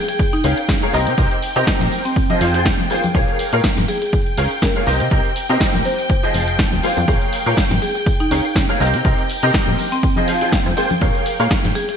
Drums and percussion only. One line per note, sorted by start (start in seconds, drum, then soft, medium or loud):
0.08 closed hi-hat medium
0.08 tambourine soft
0.19 kick loud
0.19 closed hi-hat medium
0.19 tambourine medium
0.33 closed hi-hat soft
0.33 tambourine soft
0.43 open hi-hat loud
0.43 tambourine medium
0.58 closed hi-hat medium
0.58 tambourine soft
0.69 kick loud
0.69 snare loud
0.69 closed hi-hat medium
0.69 tambourine medium
0.82 closed hi-hat soft
0.82 tambourine soft
0.93 open hi-hat medium
0.93 tambourine medium
1.07 closed hi-hat medium
1.07 tambourine soft
1.18 kick loud
1.18 closed hi-hat medium
1.18 tambourine soft
1.31 closed hi-hat soft
1.31 tambourine soft
1.42 open hi-hat loud
1.42 tambourine medium
1.56 closed hi-hat medium
1.56 tambourine soft
1.67 kick loud
1.67 snare loud
1.67 closed hi-hat medium
1.67 tambourine soft
1.80 snare soft
1.80 closed hi-hat soft
1.80 tambourine soft
1.80 high conga medium
1.92 open hi-hat medium
1.92 tambourine medium
2.05 closed hi-hat medium
2.05 tambourine soft
2.16 kick loud
2.16 closed hi-hat medium
2.16 tambourine medium
2.29 closed hi-hat soft
2.29 tambourine soft
2.29 high conga medium
2.41 open hi-hat loud
2.41 tambourine medium
2.54 closed hi-hat medium
2.54 tambourine soft
2.65 kick loud
2.65 snare loud
2.65 closed hi-hat medium
2.65 tambourine medium
2.79 closed hi-hat soft
2.79 tambourine soft
2.79 high conga medium
2.90 open hi-hat medium
2.90 tambourine medium
3.04 closed hi-hat medium
3.04 tambourine soft
3.04 high conga medium
3.15 kick loud
3.15 closed hi-hat medium
3.15 tambourine soft
3.28 closed hi-hat soft
3.28 tambourine soft
3.39 open hi-hat loud
3.39 tambourine loud
3.53 closed hi-hat medium
3.53 tambourine soft
3.63 kick loud
3.63 snare loud
3.63 closed hi-hat medium
3.63 tambourine medium
3.77 snare soft
3.77 closed hi-hat soft
3.77 tambourine soft
3.77 high conga loud
3.88 open hi-hat medium
3.88 tambourine loud
4.02 closed hi-hat medium
4.02 tambourine soft
4.13 kick loud
4.13 closed hi-hat medium
4.13 tambourine soft
4.26 closed hi-hat soft
4.26 tambourine soft
4.37 open hi-hat loud
4.37 tambourine medium
4.51 closed hi-hat medium
4.51 tambourine soft
4.62 kick loud
4.62 snare loud
4.62 closed hi-hat medium
4.62 tambourine medium
4.76 closed hi-hat soft
4.76 tambourine soft
4.87 open hi-hat medium
4.87 tambourine medium
5.00 closed hi-hat medium
5.00 tambourine soft
5.11 kick loud
5.11 closed hi-hat medium
5.11 tambourine medium
5.25 closed hi-hat soft
5.25 tambourine soft
5.36 open hi-hat loud
5.36 tambourine medium
5.49 closed hi-hat medium
5.49 tambourine soft
5.61 kick loud
5.61 snare loud
5.61 closed hi-hat medium
5.61 tambourine medium
5.73 closed hi-hat soft
5.73 tambourine soft
5.73 high conga loud
5.85 open hi-hat medium
5.85 tambourine loud
5.99 closed hi-hat medium
5.99 tambourine soft
6.10 kick loud
6.10 closed hi-hat medium
6.10 tambourine medium
6.23 closed hi-hat soft
6.23 tambourine soft
6.34 open hi-hat loud
6.34 tambourine loud
6.47 closed hi-hat medium
6.47 tambourine soft
6.59 kick loud
6.59 snare loud
6.59 closed hi-hat medium
6.59 tambourine medium
6.72 closed hi-hat soft
6.72 tambourine soft
6.72 high conga medium
6.83 open hi-hat loud
6.83 tambourine loud
6.97 closed hi-hat medium
6.97 tambourine soft
6.97 high conga loud
7.08 kick loud
7.08 closed hi-hat soft
7.08 tambourine medium
7.22 closed hi-hat soft
7.22 tambourine soft
7.33 open hi-hat loud
7.33 tambourine loud
7.46 closed hi-hat medium
7.46 tambourine soft
7.57 kick loud
7.57 snare loud
7.57 closed hi-hat medium
7.57 tambourine medium
7.71 snare soft
7.71 closed hi-hat soft
7.71 tambourine soft
7.71 high conga medium
7.82 open hi-hat loud
7.82 tambourine loud
7.95 closed hi-hat medium
7.95 tambourine soft
8.06 kick loud
8.06 closed hi-hat medium
8.06 tambourine medium
8.20 closed hi-hat soft
8.20 tambourine soft
8.31 open hi-hat loud
8.31 tambourine loud
8.45 closed hi-hat medium
8.45 tambourine soft
8.56 kick loud
8.56 snare loud
8.56 closed hi-hat medium
8.56 tambourine medium
8.69 closed hi-hat soft
8.69 tambourine soft
8.80 open hi-hat loud
8.80 tambourine medium
8.94 closed hi-hat medium
8.94 tambourine soft
9.05 kick loud
9.05 closed hi-hat soft
9.05 tambourine medium
9.18 closed hi-hat soft
9.18 tambourine soft
9.30 open hi-hat loud
9.30 tambourine loud
9.43 closed hi-hat medium
9.43 tambourine soft
9.54 kick loud
9.54 snare loud
9.54 closed hi-hat medium
9.54 tambourine medium
9.68 closed hi-hat soft
9.68 tambourine soft
9.68 high conga loud
9.79 open hi-hat loud
9.79 tambourine loud
9.92 closed hi-hat soft
9.92 tambourine soft
10.03 kick loud
10.03 closed hi-hat medium
10.03 tambourine medium
10.16 closed hi-hat soft
10.16 tambourine soft
10.16 high conga medium
10.28 open hi-hat loud
10.28 tambourine loud
10.41 closed hi-hat medium
10.41 tambourine soft
10.52 kick loud
10.52 snare loud
10.52 closed hi-hat soft
10.52 tambourine medium
10.66 closed hi-hat soft
10.66 tambourine soft
10.66 high conga medium
10.77 open hi-hat loud
10.77 tambourine loud
10.90 closed hi-hat medium
10.90 tambourine soft
10.90 high conga loud
11.01 kick loud
11.01 closed hi-hat medium
11.01 tambourine medium
11.14 closed hi-hat soft
11.14 tambourine soft
11.26 open hi-hat loud
11.26 tambourine loud
11.40 closed hi-hat soft
11.40 tambourine soft
11.51 kick loud
11.51 snare loud
11.51 closed hi-hat medium
11.51 tambourine soft
11.64 snare soft
11.64 closed hi-hat soft
11.64 tambourine soft
11.64 high conga medium
11.75 open hi-hat loud
11.75 tambourine medium
11.89 closed hi-hat soft
11.89 tambourine soft